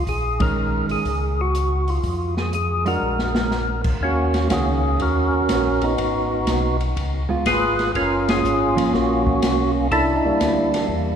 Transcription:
0.07 A#1 G#4, kick, open hi-hat
0.40 D#3 G#3 C#4 A#4, kick, ride
0.89 A#1 G#4, open hi-hat
1.05 C#2, kick, open hi-hat
1.41 F#4
1.55 closed hi-hat
1.88 F4, open hi-hat
2.03 F2, kick, open hi-hat
2.37 G#4, snare
2.53 G#4, closed hi-hat
2.86 G#3 D4 F#4 A#4, open hi-hat
3.02 A#1
3.19 snare
3.35 snare
3.51 snare
3.84 kick, crash
4.01 D#2 A#3 C#4 F#4, kick
4.34 snare, ride
4.50 C#2 D#3 A#3 C#4 F#4 G#4, kick, snare, hi-hat pedal, ride
5.00 D#2 C#4 F#4 A#4, kick, ride
5.33 D#2
5.49 A#1, kick, snare, hi-hat pedal, ride
5.81 B3 D#4 F#4, ride
5.98 G#1, kick, ride
6.47 B1, kick, snare, hi-hat pedal, ride
6.80 ride
6.97 C#2, kick, ride
7.29 C#2 G#3 B3 F4
7.46 G#1 F4 G#4 B4, kick, snare, hi-hat pedal, ride
7.79 snare, ride
7.95 F#1 C#4 F4 A#4, kick, ride
8.28 C#4 F4 G#4, snare, ride
8.44 G#1, hi-hat pedal
8.76 F3 A#3 C#4, ride
8.93 A#1 A#3 C#4 F#4, kick, snare
9.27 kick
9.42 B1, kick, snare, hi-hat pedal, ride
9.91 C2 D4 E4 A4, kick, ride
10.16 D#4
10.24 C2 G3 A#3 E4
10.40 D2, kick, snare, hi-hat pedal, ride
10.74 snare, ride
10.89 E2, kick

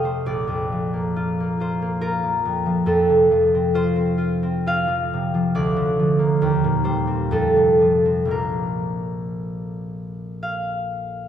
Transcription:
Already playing: F2 C3 C4 F4 A4 D#5
0.03 A3 C5
0.26 A#1 D5
0.47 F2
0.72 F3
0.93 A#3
1.16 F4
1.40 A#3
1.60 F4 C5
1.82 A#3
2.01 F4 A#4
2.23 F3
2.45 F2
2.66 F3
2.86 F2 A4
3.09 C3
3.31 F3
3.55 C4
3.74 F4 C5
3.96 C4
4.18 F4
4.43 C4
4.66 F4 F5
4.87 F3
5.13 C3
5.34 F3
5.55 D2 D5
5.76 D3
5.99 F3
6.19 A#3
6.42 D#2
6.64 A#2
6.84 G3 C5
7.07 C4
7.31 F2 A4
7.56 C3
7.81 F3
8.05 C4
8.25 A#1 F3 A#3
8.30 D4 A#4
10.43 F5

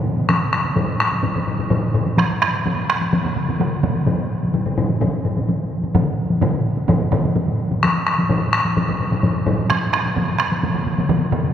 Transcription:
0.05 taiko high
0.17 taiko high
0.29 taiko rim, taiko high
0.53 taiko rim
0.65 taiko high
0.76 taiko low-mid, taiko high
1.00 taiko rim
1.12 taiko high
1.23 taiko low-mid, taiko high
1.36 taiko low-mid
1.47 taiko low-mid
1.59 taiko low-mid, taiko high
1.70 taiko low-mid, taiko high
1.94 taiko low-mid
2.06 taiko high
2.18 taiko rim, taiko high
2.42 taiko rim
2.66 taiko mid, taiko high
2.90 taiko rim
3.01 taiko high
3.13 taiko mid, taiko high
3.24 taiko mid
3.36 taiko mid
3.49 taiko mid
3.60 taiko mid, taiko high
3.83 taiko mid
3.96 taiko high
4.07 taiko low-mid, taiko high
4.43 taiko high
4.54 taiko low-mid, taiko high
4.66 taiko low-mid
4.78 taiko low-mid
4.89 taiko high
5.01 taiko low-mid, taiko high
5.25 taiko low-mid
5.37 taiko low-mid, taiko high
5.49 taiko high
5.84 taiko high
5.95 taiko low-mid, taiko mid, taiko high
6.30 taiko high
6.41 taiko low-mid, taiko mid, taiko high
6.77 taiko high
6.88 taiko low-mid, taiko mid, taiko high
7.12 taiko low-mid, taiko mid
7.24 taiko high
7.36 taiko high
7.48 taiko high
7.72 taiko high
7.83 taiko rim, taiko high
8.07 taiko rim
8.19 taiko high
8.29 taiko low-mid, taiko high
8.53 taiko rim
8.65 taiko high
8.76 taiko low-mid, taiko high
8.88 taiko low-mid
9.00 taiko low-mid
9.12 taiko low-mid, taiko high
9.23 taiko low-mid, taiko high
9.47 taiko low-mid
9.59 taiko high
9.70 taiko rim, taiko high
9.93 taiko rim
10.06 taiko high
10.16 taiko mid, taiko high
10.40 taiko rim
10.52 taiko high
10.63 taiko mid, taiko high
10.74 taiko mid
10.86 taiko mid
10.98 taiko mid, taiko high
11.09 taiko mid, taiko high
11.32 taiko mid
11.44 taiko high

